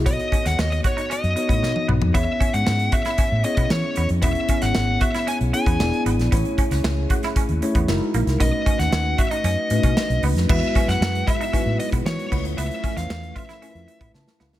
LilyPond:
<<
  \new Staff \with { instrumentName = "Lead electric guitar" } { \time 4/4 \key e \major \tempo 4 = 115 dis''8. fis''16 dis''16 dis''16 cis''8 dis''4. r8 | e''8. fis''8. e''4 dis''8 cis''8. r16 | e''8. fis''8. e''8 gis''8 gis''4 r8 | r1 |
dis''8. fis''8. e''16 dis''4.~ dis''16 r8 | e''8. fis''8. e''4 dis''8 cis''8. r16 | e''8. eis''8. e''4. r4 | }
  \new Staff \with { instrumentName = "Tine electric piano" } { \time 4/4 \key e \major <b dis' fis' a' cis''>4~ <b dis' fis' a' cis''>16 r4 r16 <b dis' fis' a' cis''>4 r8 | <b cis' e' gis' cis''>4~ <b cis' e' gis' cis''>16 r4 r16 <b cis' e' gis' cis''>4 r8 | <b cis' e' gis' cis''>4~ <b cis' e' gis' cis''>16 r4 r16 <b cis' e' gis' cis''>8 <b d' e' gis' d''>4 | <a cis' e' gis' cis''>4~ <a cis' e' gis' cis''>16 r4 r16 <a cis' e' gis' cis''>8 <gis dis' e' fis' ais'>4 |
<a cis' dis' fis' ais' b'>4~ <a cis' dis' fis' ais' b'>16 r4 r16 <a cis' d' dis' fis' b'>4 r8 | <gis b e' fis' b'>4~ <gis b e' fis' b'>16 r8. <gis dis' e' fis' b'>4 r8 <a cis' e' eis' b'>8~ | <a cis' e' eis' b'>4 r4 <a cis' e' eis' ais' b'>4 a''8 <a cis' e' eis' b' eis''>8 | }
  \new Staff \with { instrumentName = "Clean electric guitar" } { \time 4/4 \key e \major b16 r16 cis'16 r8. fis'16 dis'16 cis'16 r8 b16 r8 b16 r16 | b16 r16 cis'16 r8. fis'16 e'16 cis'16 r8 b16 r8 b16 r16 | b16 r16 cis'16 r8. fis'16 e'16 cis'16 r8 b16 r8 b16 r16 | b16 r16 cis'16 r8. fis'16 e'16 cis'16 r8 b16 r8 ais16 r16 |
b16 r16 cis'16 r8. fis'16 dis'16 cis'16 r8 cis'16 r8 b16 r16 | b16 r16 cis'16 r8. e'16 dis'16 cis'16 r8 b16 r8 b16 r16 | b16 r16 cis'16 r8. eis'16 e'16 cis'16 r8 b16 r8 b16 r16 | }
  \new Staff \with { instrumentName = "String machine" } { \time 4/4 \key e \major << { r1 | r1 | r1 | r1 |
r1 | <gis fis'>2.~ <gis fis'>8 <eis a cis'>8~ | <eis a cis'>1 | } \\ { r1 | r1 | r1 | r1 |
r1 | <fis b>1~ | <fis b>1 | } >> }
  \new Staff \with { instrumentName = "Fingered electric bass" } { \clef bass \time 4/4 \key e \major b,,16 r8 dis,16 dis,8 r8. fis,16 r16 a,16 b,16 r16 b,,16 f,16 | e,16 r8 gis,16 gis,8 r8. a,16 r16 b,16 e16 r16 e,16 f,16 | e,,16 r8 gis,,16 gis,,8 r8. b,,16 r16 e,16 e,,16 r16 gis,,16 ais,,16 | a,,16 r8 cis,16 cis,8 r8. dis,16 r16 e,16 fis,,16 r16 ais,,16 c,16 |
b,,16 r8 dis,16 dis,8 r8 fis,16 r16 a,16 b,16 r16 b,,16 cis,16 f,16 | e,16 r8 fis,16 fis,8 r8. a,16 r16 b,16 e16 r16 cis,16 d,16 | cis,16 r8 e,16 e,8 r8. eis,16 r16 a,16 cis16 r16 cis,16 d,16 | }
  \new DrumStaff \with { instrumentName = "Drums" } \drummode { \time 4/4 <hh bd>16 hh16 <hh bd>16 <hh sn>16 sn16 hh16 <hh bd>16 hh16 hh16 hh16 hh16 <hh bd>16 sn16 tommh16 toml16 tomfh16 | <hh bd>8 <hh bd>16 hh16 sn16 hh16 <hh bd>16 <hh sn>16 <hh bd>8 hh16 <hh bd>16 sn8 hh16 hh16 | <hh bd>16 hh16 <hh bd>16 <hh sn>16 sn8 <hh bd>16 <hh sn>16 hh16 hh16 hh16 <hh bd>16 sn16 hh16 hh16 <hh sn>16 | <hh bd>16 hh16 <hh bd>16 <hh sn>16 sn8 <hh bd>16 <hh sn>16 <hh bd>16 hh16 hh16 <hh bd>16 sn8 hh16 <hh sn>16 |
<hh bd>8 <hh bd>16 <hh sn>16 sn8 <hh bd>16 hh16 hh8 hh16 <hh bd>16 sn16 hh16 hho16 <hh sn>16 | <cymc bd>16 hh16 <hh bd>16 <hh sn>16 sn16 hh16 <hh bd>16 hh16 <hh bd>8 hh16 <hh bd>16 sn16 hh16 <cymc bd>16 hh16 | hh16 hh16 <hh bd>16 <hh sn>16 sn16 hh16 <hh bd>16 <hh sn>16 hh16 hh16 hh16 <hh bd>16 sn16 sn16 sn16 sn16 | }
>>